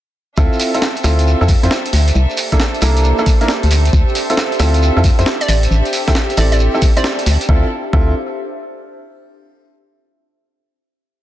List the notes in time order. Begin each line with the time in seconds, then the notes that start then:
0.37 D2 C4 D4 E4 F4 A4 E5, kick, shekere
0.53 shekere
0.59 G4 C5, open hi-hat, shekere
0.74 C4 E4 F4 A4, closed hi-hat, shekere
0.82 snare, shekere
0.96 closed hi-hat, shekere
1.04 D2 C4 E4 F4 A4, snare, open hi-hat, shekere
1.19 E5, closed hi-hat, shekere
1.27 shekere
1.41 F2 C4 E4 F4 A4, shekere
1.48 kick, open hi-hat, shekere
1.63 F2 C4 E4 F4 C5, closed hi-hat, shekere
1.71 snare, shekere
1.86 closed hi-hat, shekere
1.93 D2, open hi-hat, shekere
2.08 closed hi-hat, shekere
2.15 C2 A#3 D4, shekere
2.30 shekere
2.37 open hi-hat, shekere
2.52 A#3 D4 E4 A4, kick, closed hi-hat, shekere
2.60 snare, shekere
2.74 closed hi-hat, shekere
2.82 C2 A#3 D4 E4 A4, open hi-hat, shekere
2.97 closed hi-hat, shekere
3.04 shekere
3.18 A#3 D4 E4 A4, shekere
3.26 kick, open hi-hat, shekere
3.41 A#3 D4 E4 A#4, closed hi-hat, shekere
3.48 snare, shekere
3.63 D2, closed hi-hat, shekere
3.71 C4 D4 E5, open hi-hat, shekere
3.85 closed hi-hat, shekere
3.93 D2, kick, shekere
4.08 shekere
4.15 open hi-hat, shekere
4.30 C4 E4 F4 A4, closed hi-hat, shekere
4.37 snare, shekere
4.52 closed hi-hat, shekere
4.60 D2 C4 E4 F4 A4, snare, open hi-hat, shekere
4.74 closed hi-hat, shekere
4.82 shekere
4.97 F2 C4 E4 F4 A4, shekere
5.04 kick, open hi-hat, shekere
5.19 F2 C4 E4 F4 C5, closed hi-hat, shekere
5.26 snare, shekere
5.41 D5, closed hi-hat, shekere
5.48 A1 G4 D5, open hi-hat, shekere
5.63 closed hi-hat, shekere
5.71 A1, shekere
5.85 closed hi-hat, shekere
5.93 open hi-hat, shekere
6.08 C4 E4 G4 A4, kick, snare, closed hi-hat, shekere
6.15 snare, shekere
6.30 closed hi-hat, shekere
6.37 A1 C4 E4 G4 A4 D5, open hi-hat, shekere
6.52 D5, closed hi-hat, shekere
6.59 shekere
6.74 C4 E4 G4 A4, shekere
6.82 kick, open hi-hat, shekere
6.97 C4 E4 G4 C5 D5, closed hi-hat, shekere
7.04 snare, shekere
7.19 closed hi-hat, shekere
7.26 D2, open hi-hat, shekere
7.41 closed hi-hat, shekere
7.49 D2 C4 D4 E4 F4 A4, kick
7.58 G4
7.65 C5
7.70 E5
7.93 D2 C4 E4 F4 A4, kick